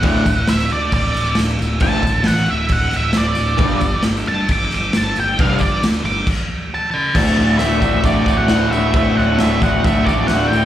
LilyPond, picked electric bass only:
\new Staff \with { instrumentName = "Picked electric bass" } { \clef bass \time 4/4 \key d \major \tempo 4 = 135 d,,8 d,,8 d,,8 d,8 d,,8 d,,8 d,,8 d,,8 | g,,8 d,,8 a,,8 d,,8 d,,8 d,,8 d,,8 d,,8 | g,,8 g,,8 g,,8 g,8 g,,8 g,,8 g,,8 g,,8 | c,8 g,,8 d,8 g,,8 r2 |
d,,8 d,,8 d,,4 d,,8 d,,8 d,,8 d,,8 | d,,8 d,,8 d,,8 d,,8 d,,8 d,,8 d,,8 d,,8 | }